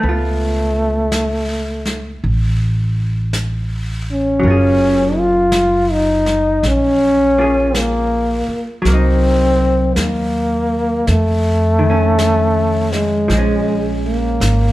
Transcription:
Already playing: hollow-body jazz guitar A3
0.03 upright bass C#2, trombone A3, hollow-body jazz guitar B3, brush sweep
0.09 hollow-body jazz guitar F4
1.12 brush sweep, snare, hi-hat pedal
1.85 snare
2.22 upright bass A1, brush sweep
3.33 brush sweep, snare, hi-hat pedal
4.12 trombone C#4
4.40 upright bass F#1, hollow-body jazz guitar F#3, brush sweep
4.45 hollow-body jazz guitar A#3 F4
4.50 hollow-body jazz guitar G#4
5.18 trombone F4
5.52 brush sweep, snare, hi-hat pedal
5.92 trombone D#4
6.26 snare
6.63 upright bass A#1, brush sweep, snare
6.67 trombone C#4
7.38 hollow-body jazz guitar A#3 F4 G#4
7.75 trombone A#3, brush sweep, snare, hi-hat pedal
8.48 muted upright bass stroke
8.82 upright bass C2, hollow-body jazz guitar F#3, brush sweep, snare
8.86 hollow-body jazz guitar A#3, trombone C4
8.94 hollow-body jazz guitar D#4
9.96 upright bass D#2, trombone A#3, brush sweep, snare, hi-hat pedal
11.07 upright bass F2, trombone A3, brush sweep, snare
11.79 hollow-body jazz guitar D#3
11.90 hollow-body jazz guitar C#4
12.19 brush sweep, snare, hi-hat pedal
12.92 trombone G#3, snare
13.28 upright bass A#1, hollow-body jazz guitar F3, brush sweep, snare
13.33 hollow-body jazz guitar G#3
13.38 hollow-body jazz guitar C#4
14.05 trombone A#3
14.40 upright bass G#1, brush sweep, snare, hi-hat pedal

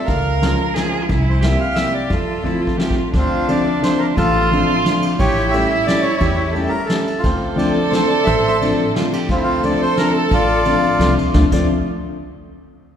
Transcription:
0.05 upright bass C#2, violin A#4, bandoneon F5, kick, closed hi-hat
0.42 upright piano F3 G#3 C#4 F4, snare, closed hi-hat
0.74 upright piano F3 G#3 C#4 F4, violin G#4, snare, closed hi-hat
1.02 violin F4
1.09 upright bass C2, violin E4, kick, closed hi-hat
1.30 bandoneon C5
1.41 upright piano G3 A#3 C4, violin G4, bandoneon E5, snare, closed hi-hat
1.45 upright piano E4
1.60 bandoneon F5
1.75 upright piano G3 A#3 C4 E4, bandoneon E5, snare, closed hi-hat
1.94 bandoneon D5
2.10 upright bass F2, violin F4, bandoneon A4, kick, closed hi-hat
2.44 upright piano F3 A3 C4 F4, violin E4, kick
2.61 violin F4
2.67 kick
2.77 upright piano F3 A3 C4 F4, violin G4, snare
2.91 kick
2.95 violin F4
3.12 upright bass D2, bandoneon C4, violin D4, kick, ride
3.19 bandoneon F4
3.48 upright piano F3 A3 C4 D4, bandoneon D5, ride
3.81 upright piano F3 A3 C4 D4, bandoneon C5, snare, ride
3.99 bandoneon A#4
4.16 upright bass A1, violin F4, bandoneon F4 A4, kick, ride
4.51 upright piano F3 A3 C4 D4, bandoneon A4, ride
4.85 upright piano F3 A3 C4 D4, snare, ride
5.02 ride
5.19 upright bass A1, violin E4, bandoneon G4 C#5, kick, ride
5.51 upright piano G3 A3 C#4 E4, bandoneon E5, ride
5.87 upright piano G3 A3 C#4 E4, bandoneon D5, snare, ride
6.02 bandoneon C#5
6.17 upright bass E2, bandoneon C#5, kick
6.22 bandoneon G4, ride
6.51 upright piano G3, bandoneon A4
6.56 upright piano A3 C#4 E4, ride
6.69 bandoneon A#4
6.86 upright piano G3 A3, bandoneon A4, snare, ride
6.90 upright piano C#4 E4
7.08 ride
7.19 bandoneon F4, violin A4
7.24 upright bass D2, bandoneon C4, kick, ride
7.56 upright piano F3 A3 C4 D4, bandoneon D5, ride
7.90 upright piano F3 A3 C4 D4, bandoneon C5, snare, ride
8.07 bandoneon D5
8.24 upright bass A1, bandoneon C5 E5, kick, ride
8.38 bandoneon E5
8.48 bandoneon E5
8.60 upright piano F3 A3 C4 D4, bandoneon D5, ride
8.96 upright piano F3 A3 C4 D4, violin F4, snare, ride
9.13 violin G4, ride
9.29 upright bass D2, bandoneon C4 F4, violin A4, kick, ride
9.36 bandoneon E4
9.43 bandoneon F4
9.63 upright piano F3 A3 C4 D4, bandoneon D5, ride
9.82 bandoneon C5
9.97 upright piano F3 A3 C4 D4, bandoneon A#4, snare, ride
10.17 bandoneon A4
10.31 upright bass A1, bandoneon F4 D5, kick, ride
10.65 upright piano F3 A3 C4 D4, ride
10.99 upright bass C2, upright piano F3 A3 C4 D4, violin F4, snare, ride
11.18 upright bass D2, ride
11.33 upright bass D2, upright piano F3 A3 C4 D4, violin F4, bandoneon D5, kick, snare
11.52 upright bass D2, upright piano F3 A3 C4 D4, violin F4, bandoneon D5, kick, crash

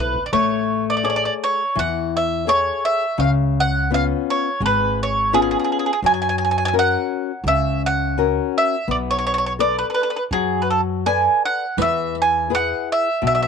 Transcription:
Already playing: upright bass B1, nylon-string guitar E4 A4 C5
0.00 mandolin B4
0.14 upright bass A1
0.26 mandolin D5
0.33 upright bass A1, nylon-string guitar A3, mandolin C#5
0.90 mandolin D5
0.97 mandolin D5
1.03 nylon-string guitar G#4 A4 C#5, mandolin D5
1.10 mandolin D5
1.16 mandolin D5
1.25 mandolin D5
1.44 mandolin C#5
1.75 upright bass E2, nylon-string guitar E3, mandolin F#5
2.17 mandolin E5
2.47 nylon-string guitar G#4 A4 C#5, mandolin C#5
2.85 mandolin E5
3.18 upright bass C#2, nylon-string guitar C#3, mandolin F5
3.60 mandolin F#5
3.91 nylon-string guitar B3 C#4 F4, mandolin F5
4.30 mandolin C#5
4.60 upright bass G#1, nylon-string guitar G#3
4.66 mandolin B4
5.03 mandolin C#5
5.33 nylon-string guitar B3 C#4 F4, mandolin G#4
5.42 mandolin G#4
5.51 mandolin G#4
5.59 mandolin G#4
5.64 mandolin G#4
5.72 mandolin G#4
5.79 mandolin G#4
5.86 mandolin G#4
5.93 mandolin G#4
6.02 upright bass F#2, nylon-string guitar F#3, mandolin G#5
6.14 mandolin G#5
6.22 mandolin G#5
6.29 mandolin G#5
6.38 mandolin G#5
6.45 mandolin G#5
6.51 mandolin G#5
6.58 mandolin G#5
6.65 mandolin G#5
6.73 nylon-string guitar C#4 F#4 A#4
6.79 mandolin F#5
7.44 upright bass C#2, nylon-string guitar C#3
7.48 mandolin E5
7.86 mandolin F#5
8.18 nylon-string guitar C#4 F#4 A#4
8.58 mandolin E5
8.88 upright bass B1, nylon-string guitar B3, mandolin D5
9.11 mandolin C#5
9.19 mandolin C#5
9.27 mandolin C#5
9.34 mandolin C#5
9.38 mandolin C#5
9.46 mandolin C#5
9.59 nylon-string guitar A4 B4 D5, mandolin D5
9.79 mandolin B4
9.90 mandolin B4
9.95 mandolin B4
10.03 mandolin B4
10.10 mandolin B4
10.16 mandolin B4
10.31 upright bass F#2, nylon-string guitar F#3, mandolin G#4
10.62 mandolin B4
10.70 mandolin A4
11.06 nylon-string guitar A4 B4 D5, mandolin G#5
11.46 mandolin F#5
11.77 upright bass E2, nylon-string guitar E3, riq
11.82 mandolin E5
12.15 riq
12.22 mandolin G#5
12.50 nylon-string guitar E4 G#4 B4
12.55 mandolin F#5
12.92 mandolin E5
13.22 upright bass B1, nylon-string guitar B2
13.27 mandolin E5
13.35 mandolin E5
13.43 mandolin E5

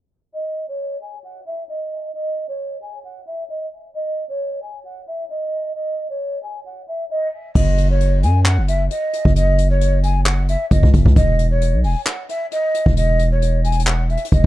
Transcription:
0.33 flute D#5
0.68 flute C#5
1.01 flute G#5
1.24 flute F#5
1.46 flute E5
1.69 flute D#5
2.14 flute D#5
2.48 flute C#5
2.81 flute G#5
3.04 flute F#5
3.27 flute E5
3.49 flute D#5
3.94 flute D#5
4.29 flute C#5
4.62 flute G#5
4.85 flute F#5
5.07 flute E5
5.30 flute D#5
5.75 flute D#5
6.10 flute C#5
6.43 flute G#5
6.65 flute F#5
6.88 flute E5
7.10 flute D#5
7.55 808-style bass F#1, flute D#5, kick, crash
7.78 closed hi-hat
7.90 flute C#5
8.00 closed hi-hat
8.23 808-style bass F#2, flute G#5, closed hi-hat
8.46 flute F#5, clap, closed hi-hat
8.58 808-style bass F#1
8.68 flute E5, closed hi-hat
8.90 flute D#5, closed hi-hat
9.13 closed hi-hat
9.25 808-style bass F#1, kick
9.36 flute D#5, closed hi-hat
9.58 closed hi-hat
9.70 flute C#5
9.81 closed hi-hat
10.03 flute G#5, closed hi-hat
10.26 flute F#5, clap, closed hi-hat
10.48 flute E5, closed hi-hat
10.71 808-style bass F#1, flute D#5, kick, closed hi-hat
10.83 808-style bass C#2, kick
10.94 808-style bass F#1, kick, closed hi-hat
11.06 808-style bass C#2, kick
11.16 808-style bass E1, flute D#5, kick, closed hi-hat
11.39 closed hi-hat
11.51 flute C#5
11.61 closed hi-hat
11.73 808-style bass B1
11.84 808-style bass E1, flute G#5, open hi-hat
12.06 flute F#5, clap, closed hi-hat
12.29 flute E5, closed hi-hat
12.52 flute D#5, closed hi-hat
12.74 closed hi-hat
12.86 808-style bass E1, kick
12.97 flute D#5, closed hi-hat
13.19 closed hi-hat
13.31 flute C#5
13.42 closed hi-hat
13.64 flute G#5, closed hi-hat
13.72 closed hi-hat
13.79 closed hi-hat
13.87 flute F#5, clap, closed hi-hat
14.10 flute E5, closed hi-hat
14.17 closed hi-hat
14.25 closed hi-hat
14.32 808-style bass E1, flute D#5, kick, closed hi-hat

